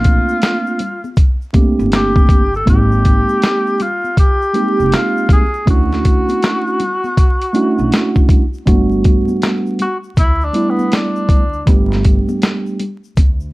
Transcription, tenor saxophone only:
0, 0, Header, 1, 2, 480
1, 0, Start_track
1, 0, Tempo, 750000
1, 1711, Time_signature, 4, 2, 24, 8
1, 8660, End_track
2, 0, Start_track
2, 0, Title_t, "Tenor saxophone"
2, 0, Program_c, 0, 66
2, 0, Note_on_c, 0, 65, 93
2, 732, Note_off_c, 0, 65, 0
2, 1249, Note_on_c, 0, 67, 100
2, 1607, Note_off_c, 0, 67, 0
2, 1639, Note_on_c, 0, 69, 86
2, 1713, Note_off_c, 0, 69, 0
2, 1724, Note_on_c, 0, 67, 104
2, 2446, Note_on_c, 0, 65, 89
2, 2456, Note_off_c, 0, 67, 0
2, 2679, Note_off_c, 0, 65, 0
2, 2683, Note_on_c, 0, 67, 97
2, 3166, Note_on_c, 0, 65, 92
2, 3175, Note_off_c, 0, 67, 0
2, 3399, Note_off_c, 0, 65, 0
2, 3406, Note_on_c, 0, 68, 94
2, 3622, Note_off_c, 0, 68, 0
2, 3647, Note_on_c, 0, 66, 91
2, 5294, Note_off_c, 0, 66, 0
2, 6281, Note_on_c, 0, 66, 93
2, 6384, Note_off_c, 0, 66, 0
2, 6521, Note_on_c, 0, 64, 96
2, 6682, Note_on_c, 0, 62, 89
2, 6691, Note_off_c, 0, 64, 0
2, 6846, Note_on_c, 0, 59, 77
2, 6856, Note_off_c, 0, 62, 0
2, 7004, Note_on_c, 0, 62, 85
2, 7014, Note_off_c, 0, 59, 0
2, 7478, Note_off_c, 0, 62, 0
2, 8660, End_track
0, 0, End_of_file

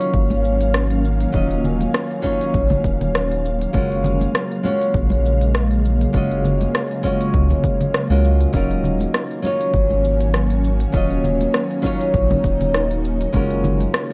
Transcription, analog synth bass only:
0, 0, Header, 1, 2, 480
1, 0, Start_track
1, 0, Tempo, 600000
1, 1072, Time_signature, 4, 2, 24, 8
1, 11306, End_track
2, 0, Start_track
2, 0, Title_t, "Analog synth bass"
2, 0, Program_c, 0, 38
2, 111, Note_on_c, 0, 32, 93
2, 1008, Note_off_c, 0, 32, 0
2, 1072, Note_on_c, 0, 27, 99
2, 1489, Note_off_c, 0, 27, 0
2, 2034, Note_on_c, 0, 34, 96
2, 2194, Note_off_c, 0, 34, 0
2, 2273, Note_on_c, 0, 27, 101
2, 2929, Note_off_c, 0, 27, 0
2, 2994, Note_on_c, 0, 30, 100
2, 3410, Note_off_c, 0, 30, 0
2, 3954, Note_on_c, 0, 34, 95
2, 4850, Note_off_c, 0, 34, 0
2, 4913, Note_on_c, 0, 30, 100
2, 5329, Note_off_c, 0, 30, 0
2, 5872, Note_on_c, 0, 37, 95
2, 6033, Note_off_c, 0, 37, 0
2, 6480, Note_on_c, 0, 37, 96
2, 6767, Note_off_c, 0, 37, 0
2, 6830, Note_on_c, 0, 27, 92
2, 7248, Note_off_c, 0, 27, 0
2, 7790, Note_on_c, 0, 32, 91
2, 8688, Note_off_c, 0, 32, 0
2, 8749, Note_on_c, 0, 27, 98
2, 9168, Note_off_c, 0, 27, 0
2, 9711, Note_on_c, 0, 34, 95
2, 9873, Note_off_c, 0, 34, 0
2, 9953, Note_on_c, 0, 27, 106
2, 10609, Note_off_c, 0, 27, 0
2, 10672, Note_on_c, 0, 30, 99
2, 11089, Note_off_c, 0, 30, 0
2, 11306, End_track
0, 0, End_of_file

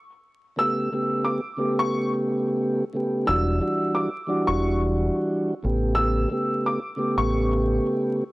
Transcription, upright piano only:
0, 0, Header, 1, 2, 480
1, 0, Start_track
1, 0, Tempo, 674157
1, 417, Time_signature, 4, 2, 24, 8
1, 5924, End_track
2, 0, Start_track
2, 0, Title_t, "Upright piano"
2, 0, Program_c, 0, 0
2, 418, Note_on_c, 0, 88, 107
2, 869, Note_off_c, 0, 88, 0
2, 886, Note_on_c, 0, 86, 76
2, 1240, Note_off_c, 0, 86, 0
2, 1275, Note_on_c, 0, 85, 93
2, 1488, Note_off_c, 0, 85, 0
2, 2330, Note_on_c, 0, 88, 112
2, 2785, Note_off_c, 0, 88, 0
2, 2810, Note_on_c, 0, 86, 77
2, 3162, Note_off_c, 0, 86, 0
2, 3185, Note_on_c, 0, 85, 90
2, 3402, Note_off_c, 0, 85, 0
2, 4236, Note_on_c, 0, 88, 101
2, 4698, Note_off_c, 0, 88, 0
2, 4743, Note_on_c, 0, 86, 80
2, 5089, Note_off_c, 0, 86, 0
2, 5110, Note_on_c, 0, 85, 88
2, 5325, Note_off_c, 0, 85, 0
2, 5924, End_track
0, 0, End_of_file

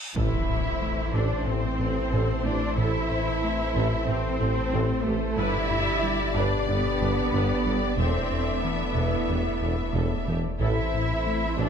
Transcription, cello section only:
0, 0, Header, 1, 2, 480
1, 0, Start_track
1, 0, Key_signature, 0, "minor"
1, 0, Tempo, 652174
1, 122, Time_signature, 4, 2, 24, 8
1, 8605, End_track
2, 0, Start_track
2, 0, Title_t, "Cello section"
2, 0, Program_c, 0, 48
2, 119, Note_on_c, 0, 64, 76
2, 811, Note_off_c, 0, 64, 0
2, 837, Note_on_c, 0, 62, 71
2, 1080, Note_off_c, 0, 62, 0
2, 1082, Note_on_c, 0, 60, 78
2, 1799, Note_on_c, 0, 62, 86
2, 1802, Note_off_c, 0, 60, 0
2, 2034, Note_on_c, 0, 64, 92
2, 2041, Note_off_c, 0, 62, 0
2, 2979, Note_off_c, 0, 64, 0
2, 2995, Note_on_c, 0, 60, 99
2, 3704, Note_off_c, 0, 60, 0
2, 3716, Note_on_c, 0, 57, 88
2, 3953, Note_on_c, 0, 64, 107
2, 3959, Note_off_c, 0, 57, 0
2, 4676, Note_on_c, 0, 62, 84
2, 4678, Note_off_c, 0, 64, 0
2, 4915, Note_on_c, 0, 59, 90
2, 4919, Note_off_c, 0, 62, 0
2, 5874, Note_on_c, 0, 60, 85
2, 5878, Note_off_c, 0, 59, 0
2, 6349, Note_off_c, 0, 60, 0
2, 6356, Note_on_c, 0, 59, 69
2, 7559, Note_off_c, 0, 59, 0
2, 7800, Note_on_c, 0, 64, 84
2, 8492, Note_off_c, 0, 64, 0
2, 8520, Note_on_c, 0, 62, 84
2, 8605, Note_off_c, 0, 62, 0
2, 8605, End_track
0, 0, End_of_file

